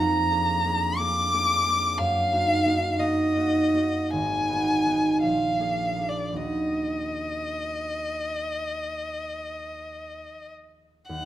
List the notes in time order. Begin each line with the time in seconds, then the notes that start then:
Already playing: F2 A#3 A#5
0.30 A#3 D4 G#4
0.64 A#3 D4 G#4
0.99 A#3 D4 G#4 D6
1.33 A#3 D4 G#4
1.66 A#3 D4 G#4
1.98 F#2 F5
2.32 A#3 D#4 F#4
2.65 A#3 D#4 F#4
2.99 A#3 D#4 F#4 D#5
3.36 A#3 D#4 F#4
3.74 A#3 D#4 F#4
4.10 G#1 G#5
4.49 B3 D#4 F#4
4.86 B3 D#4 F#4
5.22 A#1 F5
5.59 A#3 D4 G#4
5.96 A#3 D4
6.01 G#4
6.09 D5
6.32 D#2 A#3 D#4 F#4
6.36 D#5
11.09 D#2 F#5